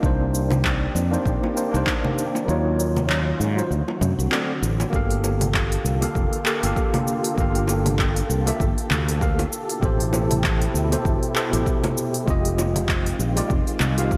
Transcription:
0.00 C2 D#3 A#3 C4 D4 D#4 G4 D5, kick, shaker
0.06 C5
0.35 shaker
0.51 high bongo, low conga, shaker
0.64 kick, clap, shaker
0.95 F2, high bongo, shaker
1.11 A#3 D4 D#4 C5, shaker
1.25 A#1, kick, shaker
1.44 high bongo
1.55 A#3 D4 D#4 C5, shaker
1.71 C2 A#3 D4 D#4, shaker
1.76 C5
1.87 kick, clap, high bongo, shaker
2.05 low conga
2.18 shaker
2.35 high bongo, shaker
2.45 D#2 D#3 F#3 C#4 D#4 F4
2.49 C#5, shaker
2.80 shaker
2.96 high bongo, low conga, shaker
3.10 clap, shaker
3.40 G#2, shaker
3.56 F#3 D#4 F4 C5, shaker
3.70 D2 D3 A3 C4 F#4, shaker
3.88 high bongo
4.01 F#2, low conga, shaker
4.19 C2, shaker
4.30 C4 F#4 A4 D5, clap, high bongo, shaker
4.62 A1, shaker
4.80 high bongo, shaker
4.90 G1 D3 A#3 F4 G4 A4, kick, shaker
4.96 F5
5.10 open hi-hat
5.24 high bongo, shaker
5.41 open hi-hat, low conga, shaker
5.54 kick, clap, shaker
5.72 open hi-hat
5.85 C2, shaker
6.01 A#3 G4 A4 F5, open hi-hat, high bongo, shaker
6.15 F1, kick, shaker
6.33 open hi-hat
6.44 A#3 G4 A4 F5, clap, shaker
6.61 G1 A#3 G4 A4, open hi-hat, shaker
6.66 F5
6.76 kick, shaker
6.94 open hi-hat, high bongo, low conga
7.08 shaker
7.24 open hi-hat, shaker
7.35 G1 A#3 G4 A4, kick, shaker
7.40 F5
7.55 open hi-hat
7.68 high bongo, shaker
7.86 open hi-hat, low conga, shaker
7.99 kick, clap, shaker
8.16 open hi-hat
8.30 C2, shaker
8.45 A#3 G4 A4 E5, open hi-hat, high bongo, shaker
8.60 G1, kick, shaker
8.78 open hi-hat
8.91 D2, clap, low conga, shaker
9.08 open hi-hat, shaker
9.20 A#3 G4 A4 F5, kick, shaker
9.39 open hi-hat, high bongo
9.52 B2 E4, shaker
9.69 open hi-hat, shaker
9.80 A1 B2 G4 A4, kick, shaker
9.85 C5
10.00 open hi-hat
10.13 high bongo, shaker
10.31 open hi-hat, low conga, shaker
10.44 kick, clap, shaker
10.61 open hi-hat
10.74 D2, shaker
10.90 B2 G4 A4 C5, open hi-hat, high bongo, shaker
11.05 G1, kick, shaker
11.23 open hi-hat
11.34 B3 G4 A4 C5, clap, shaker
11.50 A1 B2 G4 A4, open hi-hat
11.54 C5, shaker
11.66 kick, shaker
11.84 open hi-hat, high bongo, low conga
11.98 shaker
12.14 open hi-hat, shaker
12.25 F1 D#3 G#3 C4 F4 G4, kick, shaker
12.30 D#5
12.45 open hi-hat
12.58 high bongo, shaker
12.76 open hi-hat, low conga, shaker
12.89 kick, clap, shaker
13.06 open hi-hat
13.19 A#1, shaker
13.35 G#3 F4 G4 D5, open hi-hat, high bongo, shaker
13.50 F1, kick, shaker
13.67 open hi-hat
13.80 C2, clap, low conga, shaker
13.97 G#3 F4 G4 F5, open hi-hat, shaker
14.11 kick, shaker

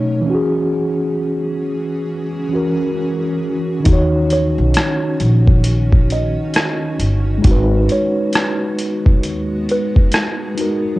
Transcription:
Already playing: B2 A3 D#4 C#5
0.21 E3
0.26 E3 C#4 F#4 G#4
0.30 F#4
0.35 G#4
2.49 E3 C#4
2.53 F#4 A#4
3.80 D#3
3.84 D#2 D#3 C#4 D#4, kick, closed hi-hat
3.88 F#4
3.93 C#5
4.30 C#5, closed hi-hat
4.58 B1
4.74 cross-stick, closed hi-hat
5.20 A#1, closed hi-hat
5.47 kick
5.64 closed hi-hat
5.92 kick
6.10 D#5, closed hi-hat
6.54 cross-stick, closed hi-hat
6.99 G1, closed hi-hat
7.38 G#3
7.42 G#1 G#3 B3 D#4, kick, closed hi-hat
7.47 F#4
7.51 B4
7.89 C#5, closed hi-hat
8.33 cross-stick, closed hi-hat
8.79 closed hi-hat
9.06 B1, kick
9.23 D#2 G#4, closed hi-hat
9.69 B4, closed hi-hat
9.96 kick
10.12 cross-stick, closed hi-hat
10.55 G#3 D#4, closed hi-hat
10.59 F#4 A#4
10.96 F#3

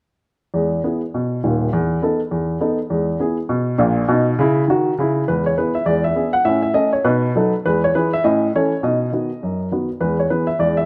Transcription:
0.54 E2 G#3
0.84 B3 E4 G#4
1.14 B2
1.44 D#1 D#2
1.73 E2
2.02 B3 D#4 A4
2.31 E2
2.61 B3 D#4 A4
2.90 E2 G#3
3.20 B3 E4 G#4
3.49 B2
3.78 A#1 A#2
4.08 B2 D#4
4.39 C#3 E4
4.68 D#3 F#4
4.98 C#3 E4
5.28 E2 G#3 B4
5.46 C#5
5.58 B3 E4 G#4 B4
5.75 E5
5.86 E2 G#3 D5
6.04 E5
6.16 B3 D4 G#4
6.33 F#5
6.45 A2 C#4 E5
6.62 E5
6.74 A3 C#4 A4 D#5
6.93 C#5
7.04 B2 D#4 B4
7.35 F#3 D#4 A4
7.66 E2 G#3 B4
7.84 C#5
7.95 E3 E4 G#4 B4
8.13 E5
8.24 A2 C#4 D#5
8.55 E3 C#4 A4 C#5
8.83 B2 D#4 D#5
9.12 D#3 B3 F#4
9.43 F#2
9.71 D#3 B3 F#4
10.01 E2 G#3 B4
10.19 C#5
10.30 E3 B3 G#4 B4
10.47 E5
10.59 E2 G#3 D5
10.77 E5

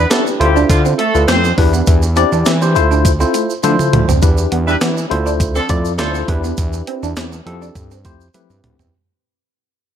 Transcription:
0.10 A3 B3 D4 E4 G4 A4 B4, snare, clap, closed hi-hat, shaker
0.27 muted clean electric guitar stroke, shaker
0.40 D2 G3 E4 F4 G4 A4 C5, closed hi-hat
0.56 D4, shaker
0.69 D3 F3 F4, muted clean electric guitar stroke, kick, closed hi-hat, shaker
0.85 C4, shaker
0.99 A3 A4, closed hi-hat
1.14 D2 E4 F4 A4 B4, shaker
1.28 F2 A3 C4 C5, snare, clap, closed hi-hat, shaker
1.44 muted clean electric guitar stroke, shaker
1.58 E2 D4 E4 G4 B4, kick, open hi-hat
1.74 B3, shaker
1.87 E2, kick, closed hi-hat, shaker
2.03 muted clean electric guitar stroke, shaker
2.16 C4 D4 E4 G4 D5, closed hi-hat, shaker
2.32 E2 D4, shaker
2.46 E3 C4, snare, clap, closed hi-hat, shaker
2.61 D4 E4 G4 C5, muted clean electric guitar stroke, shaker
2.75 D2 E4 F4 A4 C5, closed hi-hat, shaker
2.91 D4, shaker
3.05 muted clean electric guitar stroke, kick, closed hi-hat, shaker
3.20 C4 E4 F4 A4 C5, shaker
3.34 A3, closed hi-hat, shaker
3.50 shaker
3.63 D3 A3 E4 F4 A4 C5, closed hi-hat, high tom, shaker
3.79 muted clean electric guitar stroke, mid tom, shaker
3.93 D2, closed hi-hat, mid tom
4.09 D2 C4, floor tom, shaker
4.22 E2 D4 E4 G4 B4, kick, closed hi-hat, shaker
4.38 muted clean electric guitar stroke, shaker
4.52 E2 B3, closed hi-hat
4.67 G3 D4 E4 B4, shaker
4.81 E3 B3, snare, clap, closed hi-hat, shaker
4.97 muted clean electric guitar stroke, shaker
5.10 D2 E4 F4 A4 C5, closed hi-hat
5.26 D4, shaker
5.40 muted clean electric guitar stroke, kick, closed hi-hat, shaker
5.55 F3 C4 D4 A4, shaker
5.69 F2 A3 E4 F4 A4 D5, kick, closed hi-hat, shaker
5.85 shaker
5.98 D2 F3 A3 D4 E4 F4 A4 C5, snare, clap, closed hi-hat, shaker
6.15 muted clean electric guitar stroke, shaker
6.28 E2 D4 E4 G4 B4, kick, closed hi-hat
6.44 B3, shaker
6.57 E2, kick, closed hi-hat, shaker
6.73 muted clean electric guitar stroke, shaker
6.87 C4, closed hi-hat
7.03 E2 D4, shaker
7.16 E2 C4, snare, clap, closed hi-hat, shaker
7.32 muted clean electric guitar stroke, shaker
7.46 F2 C4 E4 G4 A4, closed hi-hat
7.62 D4, shaker
7.75 G2, muted clean electric guitar stroke, kick, closed hi-hat, shaker
7.91 C4, shaker
8.05 F2 A3 C4 E4 G4 C5, kick, closed hi-hat, shaker
8.21 shaker
8.34 A3 C4 E4 G4 B4, closed hi-hat, high tom, shaker
8.50 G2, muted clean electric guitar stroke, shaker
8.64 D2, closed hi-hat, mid tom
8.79 E2 C4, floor tom, shaker

